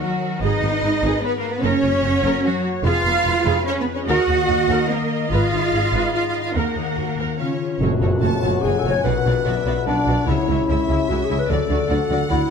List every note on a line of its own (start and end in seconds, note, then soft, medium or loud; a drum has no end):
0.00 0.44 D#3 soft
0.00 0.42 F#3 medium
0.00 0.21 D#4 soft
0.00 0.41 F#4 medium
0.00 0.42 F#4 medium
0.00 0.44 F#4 soft
0.00 0.42 A#4 soft
0.00 0.44 A#4 soft
0.22 0.82 D#4 soft
0.42 0.50 G#1 medium
0.42 1.65 G#2 medium
0.42 1.22 D#4 medium
0.42 0.62 G#4 medium
0.42 1.61 B4 medium
0.42 1.23 D#5 medium
0.42 1.22 D#5 medium
0.62 0.70 G#1 soft
0.62 0.72 B3 soft
0.62 1.43 B3 soft
0.83 0.91 G#1 medium
0.83 1.22 D#4 soft
0.83 0.92 D#4 medium
1.03 1.11 G#1 medium
1.03 1.65 G#4 soft
1.03 1.23 G#4 medium
1.23 1.37 B3 medium
1.23 1.65 D#4 medium
1.23 1.36 B4 medium
1.23 1.37 B4 medium
1.36 1.51 A#3 medium
1.36 1.50 A#4 medium
1.36 1.51 A#4 medium
1.44 1.65 B3 soft
1.48 1.64 B3 medium
1.48 1.62 B4 medium
1.52 1.64 B4 medium
1.63 1.71 F#1 medium
1.63 2.86 F#2 medium
1.63 2.44 C#4 loud
1.63 1.82 A#4 medium
1.63 2.44 C#5 medium
1.63 2.83 C#5 medium
1.63 2.45 C#5 medium
1.84 1.92 F#1 medium
1.84 2.64 A#3 soft
1.84 1.93 C#4 soft
2.03 2.11 F#1 medium
2.03 2.12 F#4 medium
2.03 2.44 F#4 soft
2.23 2.31 F#1 medium
2.23 2.43 A#4 medium
2.23 2.87 A#4 soft
2.45 2.65 F#3 medium
2.45 2.64 F#4 medium
2.45 2.65 F#4 medium
2.45 2.87 F#4 medium
2.66 2.87 A#3 soft
2.83 2.91 F1 medium
2.83 4.10 F2 medium
2.83 3.63 F4 loud
2.83 3.04 G#4 medium
2.83 4.08 B4 medium
2.83 3.63 F5 medium
3.05 3.13 F1 medium
3.05 3.87 G#3 soft
3.05 3.14 B3 medium
3.25 3.33 F1 medium
3.25 3.34 F4 medium
3.25 3.66 G#4 soft
3.45 3.53 F1 medium
3.45 3.65 G#4 medium
3.45 4.10 B4 medium
3.67 3.80 C#4 medium
3.67 4.10 G#4 medium
3.67 3.80 C#5 medium
3.67 3.73 C#5 medium
3.80 3.95 B3 medium
3.80 3.86 B4 soft
3.80 3.94 B4 medium
3.88 4.10 G#3 medium
3.93 4.01 C#4 medium
3.93 4.08 C#5 medium
3.93 4.00 C#5 medium
4.07 4.16 D#2 medium
4.07 5.34 D#3 medium
4.07 4.88 F#4 loud
4.07 4.27 A#4 medium
4.07 6.51 D#5 medium
4.07 4.88 F#5 medium
4.07 4.89 F#5 medium
4.28 4.36 D#2 medium
4.28 4.36 D#4 medium
4.28 4.68 D#4 soft
4.48 4.56 D#2 medium
4.48 4.56 F#4 medium
4.48 4.88 A#4 medium
4.69 4.77 D#2 medium
4.69 5.09 D#4 soft
4.69 4.88 A#4 medium
4.89 5.32 A#3 medium
4.89 5.31 A#4 medium
4.89 5.33 A#4 medium
4.89 5.32 A#4 medium
5.10 5.72 D#4 soft
5.30 5.40 G#1 medium
5.30 6.57 G#2 medium
5.30 6.13 F4 medium
5.30 5.51 B4 medium
5.30 6.12 F5 medium
5.30 6.13 F5 medium
5.52 5.61 G#1 soft
5.52 6.34 B3 soft
5.52 5.62 D#4 medium
5.73 5.81 G#1 medium
5.73 6.14 D#4 soft
5.73 5.83 G#4 soft
5.94 6.02 G#1 medium
5.94 6.57 G#4 soft
5.94 6.13 B4 medium
6.13 6.75 D#4 soft
6.13 6.28 F4 medium
6.13 6.25 F5 medium
6.13 6.27 F5 medium
6.27 6.42 F4 medium
6.27 6.39 F5 medium
6.27 6.40 F5 medium
6.35 6.57 B3 soft
6.40 6.56 F4 medium
6.40 6.54 F5 medium
6.40 6.55 F5 medium
6.54 6.63 D#2 medium
6.54 7.41 D#3 medium
6.54 7.39 A#3 medium
6.54 7.37 A#4 medium
6.54 6.75 A#4 medium
6.54 7.39 F#5 soft
6.75 6.83 D#2 soft
6.75 7.41 D#4 soft
6.75 6.85 D#4 soft
6.96 7.04 D#2 soft
6.96 7.41 F#4 soft
6.96 7.05 F#4 soft
7.17 7.25 D#2 medium
7.17 7.41 A#4 soft
7.17 7.38 A#4 soft
7.38 7.83 C#3 soft
7.38 7.81 C#4 soft
7.38 7.78 F4 medium
7.38 7.80 C#5 soft
7.38 7.81 C#5 soft
7.38 7.47 F5 soft
7.61 7.83 F4 soft
7.61 7.84 G#4 soft
7.80 7.88 F#1 medium
7.80 7.89 F#2 medium
7.80 9.07 F#2 medium
7.80 7.89 A3 medium
7.80 8.64 F#4 medium
7.80 7.90 F#4 medium
7.80 7.90 C#5 medium
7.80 tam-tam medium
7.93 9.07 C#3 soft
8.02 8.10 F#1 medium
8.02 8.10 F#2 medium
8.02 8.10 A3 medium
8.02 9.07 C#4 soft
8.02 8.10 F#4 medium
8.02 8.10 C#5 medium
8.12 8.94 F#4 soft
8.22 8.30 F#1 medium
8.22 8.30 F#2 medium
8.22 8.30 A3 medium
8.22 8.30 F#4 medium
8.22 8.84 A4 soft
8.22 8.31 C#5 medium
8.22 8.61 A5 medium
8.32 8.73 C#5 medium
8.43 8.51 F#1 medium
8.43 8.52 F#2 medium
8.43 8.52 A3 soft
8.43 8.52 F#4 medium
8.43 8.52 C#5 medium
8.43 8.64 F#5 soft
8.54 9.07 C#6 medium
8.62 8.72 F#1 medium
8.62 8.73 F#2 medium
8.62 8.73 A3 medium
8.62 8.73 F#4 medium
8.62 8.80 G#4 medium
8.62 8.73 C#5 medium
8.62 9.66 F#5 medium
8.62 9.04 G#5 medium
8.74 8.90 A4 medium
8.74 9.07 C#5 medium
8.84 8.92 F#1 medium
8.84 8.93 F#2 medium
8.84 8.94 A3 medium
8.84 8.94 F#4 medium
8.84 9.07 A4 soft
8.84 8.92 C#5 soft
8.90 9.03 C#5 medium
8.95 9.35 F#4 medium
9.04 9.12 B1 medium
9.04 9.13 B2 medium
9.04 10.30 B2 medium
9.04 9.14 B3 medium
9.04 9.14 F#4 medium
9.04 9.85 B4 medium
9.04 9.13 D5 medium
9.04 9.46 F#5 medium
9.16 10.30 F#3 soft
9.25 9.33 B1 medium
9.25 9.34 B2 medium
9.25 9.33 B3 medium
9.25 10.30 D4 soft
9.25 9.33 F#4 medium
9.25 9.34 D5 medium
9.37 10.18 F#4 soft
9.45 9.54 B1 medium
9.45 9.54 B2 medium
9.45 9.55 B3 medium
9.45 9.54 F#4 medium
9.45 10.08 B4 soft
9.45 9.54 D5 medium
9.45 9.86 E5 medium
9.56 9.97 D5 medium
9.66 9.74 B1 medium
9.66 9.75 B2 medium
9.66 9.74 B3 medium
9.66 9.74 F#4 soft
9.66 9.74 D5 soft
9.66 9.87 F#5 medium
9.78 10.30 B5 soft
9.86 9.94 B1 soft
9.86 9.95 B2 medium
9.86 9.95 B3 medium
9.86 10.26 D4 medium
9.86 9.95 F#4 medium
9.86 10.27 D5 medium
9.86 9.96 D5 medium
9.86 10.30 F#5 medium
9.98 10.30 D5 medium
10.07 10.15 B1 medium
10.07 10.16 B2 medium
10.07 10.15 B3 soft
10.07 10.15 F#4 soft
10.07 10.30 B4 soft
10.07 10.17 D5 soft
10.19 10.30 F#4 soft
10.27 10.35 C#2 medium
10.27 10.35 C#3 medium
10.27 11.52 C#3 medium
10.27 10.36 G#3 medium
10.27 11.10 E4 medium
10.27 10.36 E4 medium
10.27 10.69 C#5 medium
10.27 10.37 E5 medium
10.39 11.52 G#3 medium
10.48 10.56 C#2 medium
10.48 10.56 C#3 medium
10.48 10.57 G#3 medium
10.48 11.52 C#4 soft
10.48 10.57 E4 medium
10.48 10.59 E5 medium
10.59 11.38 E4 soft
10.68 10.77 C#2 medium
10.68 10.76 C#3 medium
10.68 10.78 G#3 medium
10.68 10.78 E4 medium
10.68 11.28 G#4 soft
10.68 11.48 E5 medium
10.68 10.78 E5 medium
10.80 11.19 C#5 soft
10.88 10.96 C#2 medium
10.88 10.96 C#3 medium
10.88 10.98 G#3 soft
10.88 10.98 E4 medium
10.88 11.09 E5 medium
10.88 10.98 E5 soft
11.00 11.52 G#5 medium
11.09 11.17 C#2 medium
11.09 11.17 C#3 medium
11.09 11.18 G#3 medium
11.09 11.19 E4 medium
11.09 11.26 F#4 medium
11.09 11.52 E5 medium
11.09 11.18 E5 soft
11.21 11.52 C#5 medium
11.25 11.40 G#4 medium
11.29 11.38 C#2 medium
11.29 11.37 C#3 medium
11.29 11.38 G#3 medium
11.29 11.38 E4 medium
11.29 11.51 G#4 soft
11.29 11.39 E5 soft
11.38 11.51 E4 medium
11.38 11.52 B4 medium
11.49 11.58 D2 medium
11.49 11.58 D3 medium
11.49 12.50 D3 medium
11.49 11.59 F#3 medium
11.49 11.58 F#4 medium
11.49 12.29 A4 medium
11.49 11.90 D5 medium
11.49 11.60 D5 medium
11.59 12.50 A3 soft
11.69 11.78 D2 medium
11.69 11.77 D3 medium
11.69 11.79 F#3 medium
11.69 12.50 D4 soft
11.69 11.79 F#4 medium
11.69 11.77 D5 medium
11.79 12.50 F#4 soft
11.89 11.98 D2 medium
11.89 11.97 D3 medium
11.89 11.99 F#3 medium
11.89 11.99 F#4 medium
11.89 12.49 A4 soft
11.89 11.98 D5 medium
11.89 12.50 F#5 medium
12.00 12.39 D5 soft
12.10 12.18 D2 medium
12.10 12.18 D3 medium
12.10 12.19 F#3 medium
12.10 12.19 F#4 medium
12.10 12.19 D5 medium
12.10 12.28 F#5 soft
12.29 12.39 D2 medium
12.29 12.37 D3 medium
12.29 12.38 F#3 medium
12.29 12.50 E4 medium
12.29 12.39 F#4 medium
12.29 12.37 D5 medium
12.29 12.50 F#5 medium
12.40 12.50 D5 medium